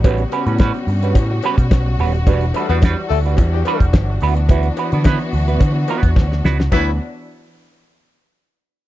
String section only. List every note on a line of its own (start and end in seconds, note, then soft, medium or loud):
0.00 2.23 C#3 medium
0.00 2.24 G3 medium
0.00 2.23 B3 medium
0.00 4.18 F#4 medium
2.27 4.20 E3 medium
2.27 4.19 G3 medium
2.27 6.68 D4 medium
4.21 6.69 E3 medium
4.21 6.69 B3 medium
4.21 6.69 F#4 loud
6.71 6.97 E3 medium
6.71 6.97 B3 medium
6.71 6.97 D4 medium
6.71 6.98 F#4 medium